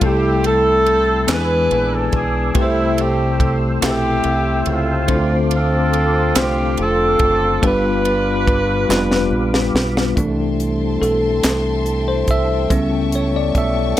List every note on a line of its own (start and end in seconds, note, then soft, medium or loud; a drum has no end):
0.01 1.24 C2 loud
0.01 1.25 C3 medium
0.01 0.82 G3 medium
0.01 0.82 A3 medium
0.01 0.82 C4 medium
0.01 0.82 E4 medium
0.01 0.45 E4 medium
0.01 1.28 A4 medium
0.01 0.83 A4 medium
0.01 1.27 G5 medium
0.01 1.27 C6 medium
0.01 5.05 E6 medium
0.01 kick loud
0.01 ride bell medium
0.06 0.43 G4 medium
0.44 1.26 E4 medium
0.44 1.30 A4 loud
0.44 ride bell soft
0.86 ride bell soft
1.27 1.67 E2 loud
1.27 2.51 E3 medium
1.27 2.08 G#3 medium
1.27 2.08 B3 medium
1.27 2.09 D4 medium
1.27 2.52 D4 medium
1.27 2.09 E4 medium
1.27 2.15 G#4 medium
1.27 2.09 B4 medium
1.27 2.55 B4 medium
1.27 2.54 G#5 medium
1.27 2.54 D6 medium
1.27 snare loud
1.27 clap loud
1.27 ride bell medium
1.32 1.93 B4 loud
1.71 2.10 A#1 loud
1.71 ride bell soft
1.95 2.14 A4 medium
2.12 2.52 B1 medium
2.12 2.54 G#4 medium
2.12 kick medium
2.12 ride bell soft
2.54 3.78 C2 loud
2.54 3.78 C3 medium
2.54 3.35 A3 medium
2.54 3.35 C4 medium
2.54 3.36 E4 medium
2.54 3.36 G4 medium
2.54 7.59 A4 medium
2.54 2.62 B4 medium
2.54 5.07 G5 medium
2.54 7.59 C6 medium
2.54 kick loud
2.54 ride bell medium
2.59 3.80 G3 medium
2.59 3.80 A3 medium
2.59 2.99 E4 medium
2.63 3.39 C5 medium
2.98 3.57 G4 loud
2.98 ride bell soft
3.40 kick medium
3.40 ride bell soft
3.82 4.21 B1 loud
3.82 4.62 A3 medium
3.82 4.63 C4 medium
3.82 4.63 E4 medium
3.82 5.06 E4 medium
3.82 4.63 G4 medium
3.82 4.64 G4 medium
3.82 4.63 A4 medium
3.82 snare loud
3.82 clap medium
3.82 ride bell medium
4.24 4.64 C2 medium
4.24 ride bell soft
4.66 5.06 C#2 medium
4.66 ride bell soft
4.70 5.91 A3 medium
4.70 5.36 C4 medium
4.70 5.36 F4 medium
5.08 6.32 D2 loud
5.08 6.32 D3 medium
5.08 5.89 A3 medium
5.08 5.89 C4 medium
5.08 5.89 D4 medium
5.08 5.15 E4 medium
5.08 5.90 C5 loud
5.08 10.14 F5 medium
5.08 10.14 D6 medium
5.08 kick loud
5.08 ride bell medium
5.16 5.93 F4 medium
5.51 6.75 C4 medium
5.51 6.75 F4 medium
5.51 ride bell soft
5.55 6.38 A4 loud
5.93 ride bell soft
6.35 6.75 C2 medium
6.35 7.17 A3 medium
6.35 7.17 C4 medium
6.35 7.17 D4 medium
6.35 7.17 F4 medium
6.35 7.17 C5 medium
6.35 snare loud
6.35 clap loud
6.35 ride bell medium
6.40 6.80 G4 loud
6.77 7.17 F1 medium
6.77 7.60 F4 medium
6.77 ride bell soft
6.81 7.61 C4 medium
6.81 7.65 A4 loud
7.19 7.59 F#1 medium
7.19 kick medium
7.19 ride bell soft
7.62 8.86 G1 loud
7.62 8.86 G2 medium
7.62 8.43 G3 medium
7.62 8.43 B3 medium
7.62 8.44 D4 medium
7.62 9.72 D4 medium
7.62 8.44 F4 medium
7.62 9.72 F4 medium
7.62 10.15 G4 medium
7.62 8.44 B4 medium
7.62 10.15 B5 medium
7.62 kick loud
7.62 ride bell medium
7.67 9.73 B4 medium
8.05 ride bell soft
8.48 kick medium
8.48 ride bell soft
8.89 9.29 F1 medium
8.89 9.70 G3 medium
8.89 9.70 B3 medium
8.89 9.71 D4 medium
8.89 9.71 F4 medium
8.89 9.71 B4 medium
8.89 snare medium
8.89 clap loud
9.11 snare medium
9.31 9.71 A#1 medium
9.54 snare medium
9.74 10.13 B1 medium
9.74 snare medium
9.97 snare medium
10.15 10.98 C2 medium
10.15 10.73 E3 soft
10.15 14.00 G3 medium
10.15 10.73 A3 soft
10.15 14.00 A3 medium
10.15 12.68 C4 medium
10.15 10.73 D4 medium
10.15 12.68 E4 medium
10.15 14.00 A4 medium
10.15 14.00 E5 medium
10.15 14.00 G5 medium
10.15 12.68 A5 medium
10.15 12.68 C6 medium
10.15 kick medium
10.15 closed hi-hat medium
10.60 closed hi-hat soft
11.02 11.41 B1 medium
11.02 12.11 A4 medium
11.02 closed hi-hat soft
11.43 12.25 C2 medium
11.43 snare medium
11.43 clap medium
11.43 closed hi-hat medium
11.86 closed hi-hat soft
12.08 12.30 C5 medium
12.28 12.67 C2 medium
12.28 13.17 E5 medium
12.28 kick medium
12.28 closed hi-hat soft
12.69 13.52 C#2 loud
12.69 13.27 G3 soft
12.69 13.27 B3 soft
12.69 14.00 C#4 medium
12.69 13.28 C#4 medium
12.69 14.00 E4 medium
12.69 14.00 A5 medium
12.69 14.00 C#6 medium
12.69 kick medium
12.69 closed hi-hat medium
13.12 13.36 C#5 medium
13.12 closed hi-hat soft
13.36 13.45 D5 medium
13.55 13.95 B1 medium
13.55 14.00 E5 medium
13.55 kick medium
13.55 closed hi-hat soft